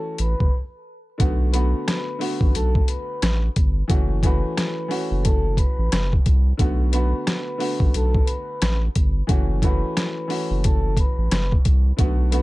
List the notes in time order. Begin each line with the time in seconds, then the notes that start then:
Already playing: E3 A3 C#4 F#4 A4 A5
0.18 A1 B4 B5, closed hi-hat
0.40 F#1, kick
1.18 B1 D3 A3 B3 F#4, kick, closed hi-hat
1.52 D3 A3 B3 F#4 B4 B5, closed hi-hat
1.88 cross-stick, snare, closed hi-hat
2.19 D3 A3 B3 F#4, open hi-hat
2.41 A1, kick
2.55 B1 A4 A5, closed hi-hat
2.75 kick
2.88 B4 B5, closed hi-hat
3.22 A1, cross-stick, snare, closed hi-hat
3.56 G1, kick, closed hi-hat
3.88 F#1 E3 A3 C#4 F#4, kick, closed hi-hat
4.23 E3 A3 C#4 F#4 B4 B5, kick, closed hi-hat
4.57 cross-stick, snare, closed hi-hat
4.88 E3 A3 C#4 F#4, open hi-hat
5.11 F#1
5.23 A4 A5, kick, closed hi-hat
5.57 B4 B5, kick, closed hi-hat
5.79 A1
5.92 F#1, cross-stick, snare, closed hi-hat
6.13 kick
6.26 C2, kick, closed hi-hat
6.57 B1 D3 A3 B3 F#4, kick, closed hi-hat
6.92 D3 A3 B3 F#4 B4 B5, closed hi-hat
7.27 cross-stick, snare, closed hi-hat
7.58 D3 A3 B3 F#4, open hi-hat
7.80 A1, kick
7.94 B1 A4 A5, closed hi-hat
8.14 kick
8.26 B4 B5, closed hi-hat
8.62 A1, cross-stick, snare, closed hi-hat
8.95 G1, kick, closed hi-hat
9.27 F#1 E3 A3 C#4 F#4, kick, closed hi-hat
9.62 E3 A3 C#4 F#4 B4 B5, kick, closed hi-hat
9.97 cross-stick, snare, closed hi-hat
10.28 E3 A3 C#4 F#4, open hi-hat
10.51 F#1
10.64 A4 A5, kick, closed hi-hat
10.97 B4 B5, kick, closed hi-hat
11.18 A1
11.31 F#1, cross-stick, snare, closed hi-hat
11.52 kick
11.65 C2, kick, closed hi-hat
11.97 B1 D3 A3 B3 F#4, kick, closed hi-hat
12.31 D3 A3 B3 F#4 B4 B5, closed hi-hat